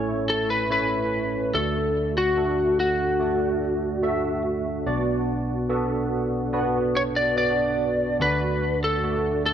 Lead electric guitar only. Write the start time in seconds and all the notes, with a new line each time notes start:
Already playing: C#5
0.30 A4
0.50 B4
0.72 B4
1.55 A4
2.18 F#4
2.80 F#4
6.97 C#5
7.16 D5
7.38 D5
8.22 B4
8.84 A4
9.46 A4